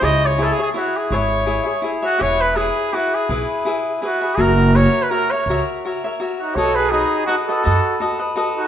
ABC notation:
X:1
M:3/4
L:1/16
Q:"Swing" 1/4=166
K:C#m
V:1 name="Cavaquinho"
[EGce]4 [EGce]2 [Gce]2 [EGce]4 | [EGce]4 [EGce]2 [Gce]2 [EGce]2 [Gce]2 | [K:E] [EGBe]4 [EGBe]4 [EGBe]4 | [EGBe]4 [EGBe]4 [EGBe]2 [GBe]2 |
[F^Ace]4 [FAce]4 [FAce]2 [Ace]2 | [F^Ace]4 [FAce]2 [Ace]2 [FAce]4 | [FABd]4 [FBd]4 [FABd]2 [ABd]2 | [FABd]4 [FABd]2 [ABd]2 [FABd]4 |]
V:2 name="Trumpet"
d2 c2 G/2 A/2 G G2 F2 G2 | c8 z2 F2 | [K:E] c2 B2 G4 F2 G2- | G4 z4 F3 G |
^A4 c3 B A2 c2- | c2 z8 F2 | c2 B2 G4 F2 A2- | A4 z6 F2 |]
V:3 name="Trumpet"
z12 | z12 | [K:E] z12 | z12 |
z12 | z8 z2 D2 | A2 G2 D4 D2 F2- | F4 z6 D2 |]
V:4 name="Upright bass" clef=bass
C,,8 z4 | G,,,8 z4 | [K:E] E,,,8 z4 | B,,,2 z8 z2 |
F,,,8 z4 | C,,2 z8 z2 | B,,,8 z4 | F,,2 z8 z2 |]